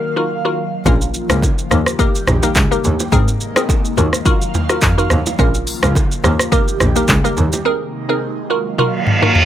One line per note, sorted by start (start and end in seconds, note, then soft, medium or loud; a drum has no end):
0.00 0.84 D#3 medium
0.00 0.84 F#3 medium
0.00 0.82 A#3 medium
0.00 0.13 D#4 medium
0.00 0.13 F4 medium
0.00 0.13 F#4 medium
0.00 0.13 A#4 loud
0.00 0.54 A#4 medium
0.00 0.84 F5 medium
0.16 0.33 D#4 medium
0.16 0.33 F4 medium
0.16 0.33 F#4 medium
0.16 0.33 A#4 medium
0.45 0.61 D#4 medium
0.45 0.62 F4 medium
0.45 0.62 F#4 medium
0.45 0.62 A#4 medium
0.86 0.94 A#1 loud
0.86 1.70 C#3 medium
0.86 1.70 F3 medium
0.86 8.46 A#3 medium
0.86 1.26 A#3 medium
0.86 1.26 C#4 medium
0.86 1.70 F4 medium
0.86 1.26 F4 medium
0.86 1.26 A#4 loud
0.86 kick loud
0.86 low conga medium
0.86 shaker medium
1.01 shaker medium
1.14 shaker medium
1.30 1.38 C#2 loud
1.30 1.68 A#3 medium
1.30 1.68 C#4 medium
1.30 1.68 F4 medium
1.30 1.68 A#4 medium
1.30 cross-stick loud
1.30 low bongo medium
1.30 shaker medium
1.42 kick medium
1.42 high bongo medium
1.42 shaker medium
1.58 shaker medium
1.71 1.79 D#2 medium
1.71 3.11 D#3 medium
1.71 3.11 G3 medium
1.71 1.97 A#3 medium
1.71 1.97 D#4 medium
1.71 3.11 G4 medium
1.71 1.97 G4 medium
1.71 1.97 A#4 medium
1.71 cross-stick medium
1.71 shaker medium
1.86 cross-stick loud
1.86 shaker medium
1.99 2.39 A#3 medium
1.99 2.39 D#4 medium
1.99 2.39 G4 medium
1.99 2.39 A#4 loud
1.99 kick loud
1.99 low conga medium
1.99 shaker medium
2.15 shaker medium
2.27 2.36 A#1 loud
2.27 cross-stick loud
2.27 mid tom medium
2.27 low bongo medium
2.27 shaker medium
2.43 2.60 A#3 medium
2.43 2.60 D#4 medium
2.43 2.60 G4 medium
2.43 2.60 A#4 medium
2.43 shaker medium
2.55 2.64 C#2 medium
2.55 kick medium
2.55 clap medium
2.55 high bongo medium
2.55 shaker medium
2.71 2.88 A#3 medium
2.71 2.88 D#4 medium
2.71 2.88 G4 medium
2.71 2.88 A#4 medium
2.71 shaker medium
2.84 2.92 D#2 medium
2.84 high bongo soft
2.84 low conga medium
2.84 shaker medium
3.00 low bongo medium
3.00 shaker medium
3.12 3.20 G#1 loud
3.12 3.96 C3 medium
3.12 3.96 G#3 medium
3.12 3.52 C4 medium
3.12 3.52 D#4 medium
3.12 3.97 D#4 medium
3.12 3.53 G#4 medium
3.12 3.53 A#4 loud
3.12 kick loud
3.12 low conga medium
3.12 shaker medium
3.28 shaker medium
3.41 shaker medium
3.56 3.94 C4 medium
3.56 3.94 D#4 medium
3.56 3.94 G#4 medium
3.56 3.94 A#4 medium
3.56 cross-stick loud
3.56 low bongo medium
3.56 shaker medium
3.69 kick medium
3.69 high bongo medium
3.69 shaker medium
3.85 shaker soft
3.97 4.05 D#2 loud
3.97 5.37 D#3 medium
3.97 5.38 F#3 medium
3.97 4.23 D#4 medium
3.97 4.24 F4 medium
3.97 4.24 F#4 medium
3.97 4.24 A#4 medium
3.97 5.38 F5 medium
3.97 shaker medium
4.13 cross-stick medium
4.13 shaker medium
4.25 4.66 D#4 medium
4.25 4.66 F4 medium
4.25 4.66 F#4 medium
4.25 4.66 A#4 loud
4.25 kick loud
4.25 low conga medium
4.25 shaker medium
4.42 shaker medium
4.54 mid tom medium
4.54 low bongo medium
4.54 shaker medium
4.69 4.86 D#4 medium
4.69 4.86 F4 medium
4.69 4.86 F#4 medium
4.69 4.86 A#4 medium
4.69 cross-stick medium
4.69 shaker medium
4.81 4.90 F2 loud
4.81 kick loud
4.81 clap medium
4.81 high bongo medium
4.81 shaker medium
4.98 5.14 D#4 medium
4.98 5.14 F4 medium
4.98 5.15 F#4 medium
4.98 5.15 A#4 medium
4.98 shaker medium
5.10 5.19 D#2 medium
5.10 cross-stick medium
5.10 high bongo soft
5.10 low conga medium
5.10 shaker medium
5.26 low bongo medium
5.26 shaker medium
5.39 5.47 A#1 loud
5.39 6.23 C#3 medium
5.39 6.23 F3 medium
5.39 5.79 A#3 loud
5.39 5.79 C#4 medium
5.39 6.23 F4 medium
5.39 5.79 F4 medium
5.39 5.79 A#4 loud
5.39 kick loud
5.39 low conga medium
5.39 shaker medium
5.54 shaker medium
5.67 open hi-hat medium
5.67 shaker medium
5.83 5.91 C#2 medium
5.83 6.21 A#3 medium
5.83 6.21 C#4 medium
5.83 6.21 F4 medium
5.83 6.21 A#4 medium
5.83 cross-stick loud
5.83 low bongo medium
5.83 shaker medium
5.95 kick medium
5.95 high bongo medium
5.95 shaker medium
6.12 shaker medium
6.23 6.32 D#2 loud
6.23 7.64 D#3 medium
6.23 7.64 G3 medium
6.23 6.50 A#3 medium
6.23 6.50 D#4 medium
6.23 7.64 G4 medium
6.23 6.50 G4 medium
6.23 6.50 A#4 medium
6.23 cross-stick medium
6.23 shaker medium
6.39 cross-stick loud
6.39 shaker medium
6.52 6.92 A#3 medium
6.52 6.92 D#4 medium
6.52 6.92 G4 medium
6.52 6.92 A#4 loud
6.52 kick loud
6.52 low conga medium
6.52 shaker medium
6.68 shaker medium
6.80 6.88 A#1 medium
6.80 cross-stick loud
6.80 mid tom medium
6.80 low bongo medium
6.80 shaker medium
6.96 7.12 A#3 medium
6.96 7.12 D#4 medium
6.96 7.13 G4 medium
6.96 7.13 A#4 medium
6.96 shaker medium
7.08 7.17 C#2 loud
7.08 kick loud
7.08 clap medium
7.08 high bongo medium
7.08 shaker medium
7.24 7.41 A#3 medium
7.24 7.41 D#4 medium
7.24 7.41 G4 medium
7.24 7.41 A#4 medium
7.24 shaker soft
7.37 7.45 D#2 medium
7.37 high bongo soft
7.37 low conga medium
7.37 shaker medium
7.53 low bongo medium
7.53 shaker medium
7.65 8.49 C3 medium
7.65 8.49 G#3 medium
7.65 8.05 C4 medium
7.65 8.05 D#4 medium
7.65 8.49 D#4 medium
7.65 8.05 G#4 medium
7.65 8.06 A#4 loud
8.09 8.47 C4 medium
8.09 8.47 D#4 medium
8.09 8.47 G#4 medium
8.09 8.47 A#4 medium
8.50 9.45 D#3 medium
8.50 9.45 F#3 medium
8.50 9.45 A#3 medium
8.50 8.76 D#4 medium
8.50 8.76 F4 medium
8.50 8.76 F#4 medium
8.50 8.77 A#4 medium
8.50 9.45 F5 medium
8.78 9.19 D#4 medium
8.78 9.19 F4 medium
8.78 9.19 F#4 medium
8.78 9.19 A#4 loud
8.78 high tom medium
8.78 reverse cymbal medium
9.07 mid tom medium
9.22 9.39 D#4 medium
9.22 9.39 F4 medium
9.22 9.39 F#4 medium
9.22 9.39 A#4 medium
9.22 mid tom medium
9.35 mid tom medium